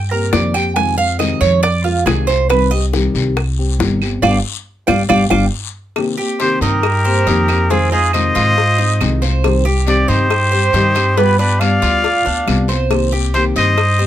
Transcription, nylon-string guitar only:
0.12 A#3 C4 G4
0.32 C3 D#3 A#3 C4 G4
0.55 A#3 C4 G4
0.76 C3 D#3 G#3 C4 F4
0.98 G#3 C4 F4
1.20 C3 D#3 G#3 C4 F4
1.63 muted nylon-string guitar stroke
1.85 G#3 C4 F4
2.07 C3 D#3 G#3 C4 F4
2.29 G#3 C4 F4
2.50 C3 D#3 G3 C4 G4
2.73 G3 C4 G4
2.94 C3 D#3 G3 C4 G4
3.59 G3 C4 G4
3.81 C3 D#3 G3 C4 G4
4.02 G3 C4 G4
4.24 G3 B3 D4
4.88 G3 B3 D4
5.09 G3 B3 D4
5.31 G3 B3 D4
5.96 C3 D#3 A#3 C4 G4
6.19 A#3 C4 G4
6.40 C3 D#3 A#3 C4 G4
6.84 muted nylon-string guitar stroke
7.05 A#3 C4 G4
7.27 C3 D#3 A#3 C4 G4
7.50 A#3 C4 G4
7.70 C3 D#3 G#3 C4 F4
7.91 G#3 C4 F4
8.14 C3 D#3 G#3 C4 F4
8.58 muted nylon-string guitar stroke
8.79 G#3 C4 F4
9.01 C3 D#3 G#3 C4 F4
9.23 G#3 C4 F4
9.44 C3 D#3 G3 C4 G4
9.65 G3 C4 G4
9.86 C3 D#3 G3 C4 G4
10.30 muted nylon-string guitar stroke
10.53 G3 C4 G4
10.74 C3 D#3 G3 C4 G4
10.97 G3 C4 G4
11.17 G3 B3 F4
11.39 B3 F4
11.61 G3 B3 F4
12.05 muted nylon-string guitar stroke
12.24 B3 F4
12.46 G3 B3 F4
12.68 B3 F4
12.90 C3 D#3 A#3 C4 G4
13.12 A#3 C4 G4
13.35 C3 D#3 A#3 C4 G4
13.77 muted nylon-string guitar stroke
13.99 A#3 C4 G4

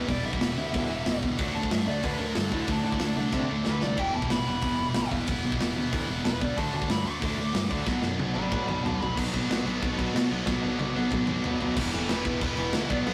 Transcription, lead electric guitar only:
0.08 D5
0.25 E5
1.55 A5
1.72 E5
1.87 D5
2.04 B4
2.21 A#4
2.35 A4
2.52 E4
2.71 D4
2.84 D4
3.64 B4
3.82 D5
3.99 G5
4.15 A5
4.31 B5
4.48 B5
6.24 B4
6.41 D5
6.58 A5
6.76 A5
6.91 B5
7.07 D6
8.34 D5 B5
8.52 D5 B5
8.66 D5 B5
8.83 F#5 A5
9.01 B5
11.94 A4
12.12 B4
12.43 B4
12.90 D5
13.06 F#5

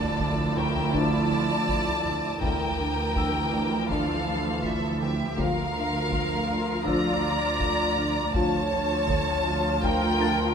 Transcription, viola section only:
Already playing: F3 E4
2.41 E3 F3
5.38 F3 F4
8.34 F3 F4

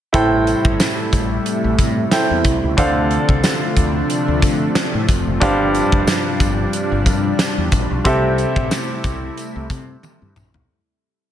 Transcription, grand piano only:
0.13 A2 E4 A4 C5 G5
2.11 E4 A4 C5 G5
2.77 D3 D4 A4 C5 F5
5.40 G2 D4 G4 C5 F5
8.04 C3 C4 G4 A4 E5

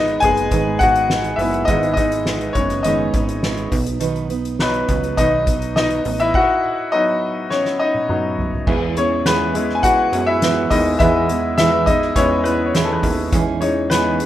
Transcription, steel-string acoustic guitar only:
Already playing: G#3 B3 D#4 B4
0.23 G#3 B3 D#4 B4
0.52 G#2 D#3 G#3 B3 D#4 B4
0.81 G#3 B3 D#4 B4
1.10 G#3 B3 D#4 B4
1.39 G#3 B3 D#4 B4
1.68 G#2 D#3 G#3 B3 D#4 B4
1.97 G#3 B3 D#4 B4
2.25 G#3 B3 D#4 B4
2.55 G#3 B3 D#4 B4
2.84 G#2 D#3 G#3 B3 D#4 B4
3.13 G#3 B3 D#4 B4
3.42 G#3 B3 D#4 B4
3.71 F#3 B3 D#4 B4
4.00 B2 D#3 F#3 B3 D#4 B4
4.29 F#3 B3 D#4 B4
4.59 F#3 B3 D#4 B4
4.88 F#3 B3 D#4 B4
5.17 B2 D#3 F#3 B3 D#4 B4
5.47 F#3 B3 D#4 B4
5.75 F#3 B3 D#4 B4
6.04 F#3 B3 D#4 B4
8.67 E2 E3 G#3 B3 E4 G#4
8.96 G#3 B3 E4 G#4
9.26 E2 E3 G#3 B3 E4 G#4
9.54 G#3 B3 E4 G#4
9.83 G#3 B3 E4 G#4
10.13 G#3 B3 E4 G#4
10.42 E2 E3 G#3 B3 E4 G#4
10.70 G#3 B3 E4 G#4
11.00 E2 E3 G#3 B3 E4 G#4
11.28 G#3 B3 E4 G#4
11.58 E2 E3 G#3 B3 E4 G#4
11.87 G#3 B3 E4 G#4
12.16 G#3 B3 E4 G#4
12.45 G#3 B3 E4 G#4
12.75 E2 E3 G#3 B3 E4 G#4
13.03 G#3 B3 E4 G#4
13.32 E2 E3 G#3 C#4 D#4 G#4
13.61 G#3 C#4 D#4 G#4
13.91 E2 E3 G#3 C#4 D#4 G#4
14.20 C#4 D#4 G#4

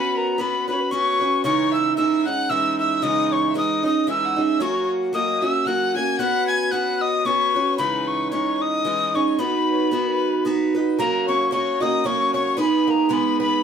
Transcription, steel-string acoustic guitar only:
Already playing: B3 C#4 F#4 B4
0.38 B3 C#4 F#4 B4
0.68 C#4 F#4 B4
0.91 B3 C#4 F#4 B4
1.20 C#4 F#4 B4
1.44 C#3 E3 G#3 C#4 D#4
1.97 E3 G#3 C#4 D#4
2.26 G#3 C#4 D#4
2.50 E3 G#3 C#4 D#4
3.02 C#3 E3 G#3 C#4 D#4
3.54 E3 G#3 C#4 D#4
3.83 G#3 C#4 D#4
4.07 E3 G#3 C#4 D#4
4.36 G#3 C#4 D#4
4.60 F#3 A#3 C#4 F#4
5.13 F#3 A#3 C#4 F#4
5.42 A#3 C#4 F#4
5.66 F#3 A#3 C#4 F#4
5.95 A#3 C#4 F#4
6.19 B3 C#4 F#4 B4
6.71 B3 C#4 F#4 B4
7.25 B3 C#4 F#4 B4
7.54 C#4 F#4 B4
7.78 C#3 E3 G#3 C#4 D#4
8.32 E3 G#3 C#4 D#4
8.84 E3 G#3 C#4 D#4
9.14 G#3 C#4 D#4
9.39 B3 D#4 F#4 B4
9.91 B3 D#4 F#4 B4
10.45 B3 D#4 F#4 B4
10.75 D#4 F#4 B4
10.99 F#3 A#3 C#4 F#4
11.51 F#3 A#3 C#4 F#4
11.81 A#3 C#4 F#4
12.04 F#3 A#3 C#4 F#4
12.57 G#3 B3 D#4 G#4
13.09 G#3 B3 D#4 G#4

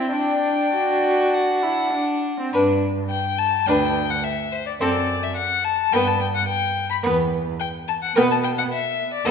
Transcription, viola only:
Already playing: C4
0.13 D4
0.73 F#4
1.63 E4
1.93 D4
2.40 C4
2.54 D4
3.67 D4
4.81 C4
5.93 B3
7.04 B3
8.16 B3
9.26 B3

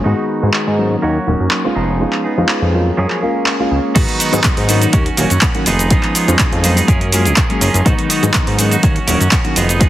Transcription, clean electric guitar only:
0.04 D#3 B3 D#4 F#4
1.02 A#3 C#4 F#4
1.75 F3 B3 D#4 G#4
2.24 B3 D#4 G#4
2.97 F3 A#3 C#4 G#4
3.22 A#3 C#4 G#4
3.95 D#3 B3 D#4 F#4
4.19 D#3 B3 D#4 F#4
4.44 D#3 B3 D#4 F#4
4.68 D#3 B3 D#4 F#4
4.81 B3 D#4 F#4
4.93 A#3 C#4 F#4
5.05 C#4 F#4
5.17 A#3 C#4 F#4
5.30 C#4 F#4
5.42 A#3 C#4 F#4
5.54 C#4 F#4
5.66 F3 B3 D#4 G#4
5.91 B3 D#4 G#4
6.14 F3 B3 D#4 G#4
6.40 B3 G#4
6.63 F3 B3 D#4 G#4
6.76 B3 D#4 G#4
6.88 F3 A#3 C#4 G#4
7.00 A#3 C#4 G#4
7.12 F3 A#3 C#4 G#4
7.25 A#3 C#4 G#4
7.36 F3 A#3 C#4 G#4
7.49 A#3 C#4 G#4
7.61 F3 A#3 C#4 G#4
7.85 D#3 B3 D#4 F#4
8.09 D#3 B3 D#4 F#4
8.34 D#3 B3 D#4 F#4
8.58 D#3 B3 D#4 F#4
8.71 B3 D#4 F#4
8.83 A#3 C#4
8.95 C#4 F#4
9.07 A#3 C#4 F#4
9.20 C#4 F#4
9.32 A#3
9.44 C#4 F#4
9.56 F3 B3 D#4 G#4
9.69 B3 D#4 G#4
9.80 F3 B3 D#4 G#4

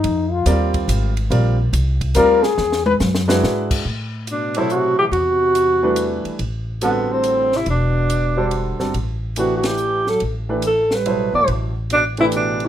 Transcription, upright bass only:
0.04 F2
0.46 D#2
0.88 G#1
1.30 A#1
1.73 C2
2.15 D2
2.58 E2
3.00 F#2
3.43 G#2
3.85 A2
5.11 E2
6.25 muted upright bass stroke
6.39 A1
7.66 E1
8.80 G1
8.94 A1
10.22 A1
11.34 E2
11.48 A1

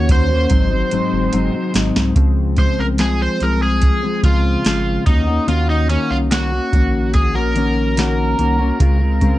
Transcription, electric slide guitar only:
0.12 C5
2.59 C5
2.80 A#4
3.01 G#4
3.22 C5
3.43 A#4
3.63 G#4
4.25 F4
5.06 D#4
5.49 F4
5.70 D#4
5.90 C#4
6.11 F4
6.32 F#4
7.14 G#4
7.35 A#4

